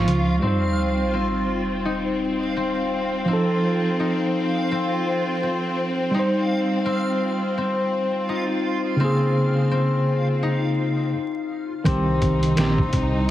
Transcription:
Already playing: F3 C4 D#4 F4 F5 C#6
0.07 C#2, closed hi-hat
0.39 G3 C4 D#4 F4 F5, sub drop
0.47 C5
1.14 C4
1.85 D#4
2.56 C4
3.25 F3 C4 D#4
3.33 A4
3.99 D#4
4.71 C4
5.43 C4
6.11 G3 D#4
6.15 D#4
6.19 C5
6.86 C4
7.58 C4
8.29 D#4
8.96 C#3 C4
9.01 A#3 G#4
9.71 C4
10.43 D#4
11.84 C2 D#3 C4 D#4 G4, kick, closed hi-hat
12.22 kick, closed hi-hat
12.43 closed hi-hat
12.56 A#1 D#3 C4 G4, snare, closed hi-hat
12.78 kick
12.93 C2, kick, closed hi-hat

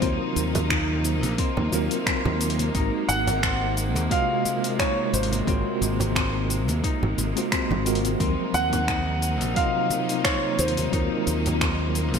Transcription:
Already playing: C3 D#3 A#3 D#4 F4 C5 D#5
0.00 D#2 F#3 C4 D#4 F4 A#4, kick, open hi-hat, cabasa
0.36 D#2, open hi-hat, cabasa
0.55 open hi-hat, low conga, cabasa
0.70 D#4, finger snap, kick, cabasa
1.04 open hi-hat, cabasa
1.23 A#1, open hi-hat, high conga, cabasa
1.38 C4, kick, open hi-hat, cabasa
1.57 D#2, low conga
1.70 D#2 F#3 C4 D#4 F4, open hi-hat, high conga, cabasa
1.75 A#4
1.91 open hi-hat, cabasa
2.06 C4, finger snap, kick, open hi-hat, cabasa
2.25 D#2, high conga, low conga
2.41 open hi-hat, cabasa
2.50 open hi-hat
2.59 open hi-hat, high conga, cabasa
2.73 G#1 G#3 C4 D#4 F#4, kick, open hi-hat, cabasa
2.78 A#4
3.09 G#1 F#5, open hi-hat, cabasa
3.27 open hi-hat, low conga, cabasa
3.43 C4, finger snap, kick, cabasa
3.77 open hi-hat, cabasa
3.95 D#2, open hi-hat, high conga, cabasa
4.09 C3 G#3 C4 F4 F#4 F5, kick, open hi-hat, cabasa
4.13 D#5
4.45 open hi-hat, high conga, cabasa
4.64 open hi-hat, cabasa
4.79 D#4 C#5, finger snap, kick, open hi-hat, cabasa
5.13 G#1 C5, open hi-hat, cabasa
5.23 open hi-hat
5.32 open hi-hat, high conga, cabasa
5.46 G#1 G#3 C4 F4 F#4, kick, open hi-hat, cabasa
5.50 A#4
5.81 G#1, open hi-hat, cabasa
6.00 open hi-hat, low conga, cabasa
6.15 C4, finger snap, kick, cabasa
6.50 open hi-hat, cabasa
6.68 D#2, open hi-hat, high conga, cabasa
6.84 D#4, kick, open hi-hat, cabasa
7.03 G#1, low conga
7.18 G#1, open hi-hat, high conga, cabasa
7.36 G#3 C4 F4 F#4 C5, open hi-hat, cabasa
7.52 C4, finger snap, kick, open hi-hat, cabasa
7.71 G#1, high conga, low conga
7.85 G#3 C4 F4 F#4 A#4, open hi-hat, cabasa
7.95 open hi-hat
8.05 open hi-hat, high conga, cabasa
8.18 D#2 D#3 F3 F#3 A#3 C4 D#4, kick, open hi-hat, cabasa
8.22 A#4
8.54 D#2 F#5, open hi-hat, cabasa
8.73 open hi-hat, low conga, cabasa
8.88 D#4, finger snap, kick, cabasa
9.22 open hi-hat, cabasa
9.41 A#1, open hi-hat, high conga, cabasa
9.54 C3 F#3 C4 D#4 F4 F5, kick, open hi-hat, cabasa
9.58 D#5
9.90 open hi-hat, high conga, cabasa
10.09 open hi-hat, cabasa
10.24 C4 C#5, finger snap, kick, open hi-hat, cabasa
10.59 D#2 C5, open hi-hat, cabasa
10.68 open hi-hat
10.77 open hi-hat, high conga, cabasa
10.91 D#2 F#3 C4 D#4 F4, kick, open hi-hat, cabasa
10.95 A#4
11.27 D#2, open hi-hat, cabasa
11.46 open hi-hat, low conga, cabasa
11.61 C4, finger snap, kick, cabasa
11.95 open hi-hat, cabasa
12.14 A#1, open hi-hat, high conga, cabasa

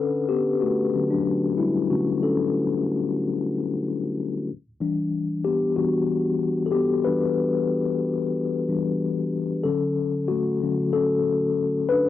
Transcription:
Already playing: D3 C#4 D4 A4 B4
0.29 B3 G4
0.61 A3 F#4
0.94 D3 F#3 C#4
1.10 F#3 D4
1.58 G3 E4
1.90 D3 F#3 A3 C#4 F#4
2.23 C#4 A4
4.81 E3 G3 D4
5.45 B3 G4
5.76 E3 G3 B3 D4 F#4
6.66 A4
6.72 B3 G4
7.05 E3 G3 D4 B4
8.68 E3 G3 D4
9.64 D3 F#3 C#4 A4
10.28 A3 F#4
10.62 D3 F#3 C#4
10.93 C#4 A4
11.89 D4 B4

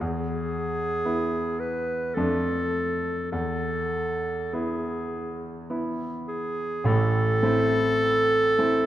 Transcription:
0.00 E2 G#4
1.05 B3 E4
1.60 B4
2.15 F2 A3 D4 A4
3.32 E2 A4
4.53 B3 E4 G#4
5.70 B3 E4
6.28 G#4
6.84 A1 A2 A4
7.43 A3 C4 E4
8.59 A3 C4 E4

